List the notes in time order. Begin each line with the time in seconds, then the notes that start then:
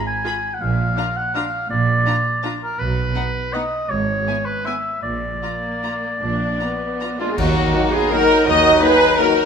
0.07 G#5
0.24 F4 G#4 B5
0.54 F#5
0.61 A#1 A#2 F5
0.97 D4 F4 A#5
1.16 F#5
1.35 D4 F4 F5 A#5
1.70 A#1 A#2 D5
2.06 D4 F4 A#5
2.44 D4 F4 A#5
2.63 A#4
2.79 B1 B2 B4
3.15 B3 D#4 F#5
3.53 B3 D#4 D#5 F#5
3.90 G#1 G#2 C#5
4.26 B3 E4 G#5
4.45 B4
4.65 B3 E4 E5 G#5
5.03 A#1 A#2 D5
5.43 A#3 F4 A#5
5.83 F4 A#5
6.21 A#1 A#2 D4
6.60 B3 F4 A#5
7.00 F4 A#5
7.19 G#3 A#3 D4 F4
7.30 G#4
7.37 D#2 D#3 F#3 A#3 D#4 F#4 A#5, concert bass drum, crash
7.73 D#3 F#3 A#3 D#4
7.92 B3 F4 G#4
8.10 D#3 F#3 A#3 D#4 F#4 A#4
8.46 D#2 D#3 F#4 A#4 D#5
8.81 D#3 F#3 A#3 D#4 G#4 B4
9.19 D#3 F#3 A#3 D#4 F#4 A#4